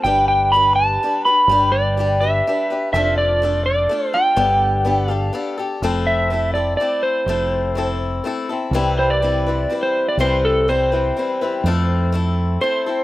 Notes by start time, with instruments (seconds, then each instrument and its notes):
0.04 fingered electric bass G1, steel-string acoustic guitar G3 D4 G4 B4, electric slide guitar G5
0.28 electric slide guitar G5
0.52 steel-string acoustic guitar G3 D4, electric slide guitar B5
0.56 steel-string acoustic guitar G4 B4
0.76 electric slide guitar A5
1.03 steel-string acoustic guitar G3 D4 G4 B4
1.25 steel-string acoustic guitar D4 G4 B4, electric slide guitar B5
1.48 fingered electric bass G1, steel-string acoustic guitar G3 D4 G4
1.52 steel-string acoustic guitar B4
1.72 electric slide guitar D5
1.97 steel-string acoustic guitar G3 D4 G4 B4
2.20 steel-string acoustic guitar D4 G4 B4, electric slide guitar E5
2.47 steel-string acoustic guitar G3 D4 G4 B4
2.70 steel-string acoustic guitar D4 G4 B4
2.93 fingered electric bass F1, steel-string acoustic guitar F3 A3 D4 F4 A4, electric slide guitar E5
3.18 electric slide guitar D5
3.42 steel-string acoustic guitar A3 D4 F4 A4
3.66 electric slide guitar D5
3.89 steel-string acoustic guitar A3 D4 F4 A4
4.13 steel-string acoustic guitar D4 F4 A4, electric slide guitar G5
4.36 fingered electric bass G1, steel-string acoustic guitar G3 B3 D4 G4 A4
4.85 steel-string acoustic guitar B3 D4 G4 A4
5.08 steel-string acoustic guitar D4 G4 A4, electric slide guitar F5
5.33 steel-string acoustic guitar B3 D4 G4 A4
5.57 steel-string acoustic guitar D4 G4 A4
5.82 fingered electric bass F1, steel-string acoustic guitar F3 A3 C4 E4 A4
6.07 electric slide guitar E5
6.30 steel-string acoustic guitar A3 C4 E4 A4
6.54 steel-string acoustic guitar C4 E4 A4, electric slide guitar D5
6.77 steel-string acoustic guitar A3 C4 E4, electric slide guitar D5
6.82 steel-string acoustic guitar A4
7.03 electric slide guitar C5
7.26 fingered electric bass F1, steel-string acoustic guitar F3 A3 C4 E4 A4
7.75 steel-string acoustic guitar A3 C4 E4 A4
8.24 steel-string acoustic guitar A3 C4 E4 A4
8.49 steel-string acoustic guitar C4 E4 A4
8.71 fingered electric bass C2, steel-string acoustic guitar C3 E3 G3 C4 E4 B4
8.99 electric slide guitar C5
9.10 electric slide guitar D5
9.22 steel-string acoustic guitar G3 C4 E4 B4
9.46 steel-string acoustic guitar G3 C4 E4 B4
9.70 steel-string acoustic guitar G3 C4 E4 B4
9.83 electric slide guitar C5
10.09 electric slide guitar D5
10.17 fingered electric bass C2, steel-string acoustic guitar C3 E3 G3 C4 E4 B4, electric slide guitar C5
10.45 electric slide guitar A4
10.68 steel-string acoustic guitar G3 C4 E4 B4, electric slide guitar C5
10.92 steel-string acoustic guitar G3 C4 E4 B4
11.17 steel-string acoustic guitar G3 C4 E4 B4
11.41 steel-string acoustic guitar G3 C4 E4 B4
11.64 fingered electric bass F2, steel-string acoustic guitar F3 A3 C4 E4
11.68 steel-string acoustic guitar A4
12.12 steel-string acoustic guitar A3 C4 E4 A4
12.61 steel-string acoustic guitar A3 C4 E4 A4, electric slide guitar C5
12.86 steel-string acoustic guitar C4 E4 A4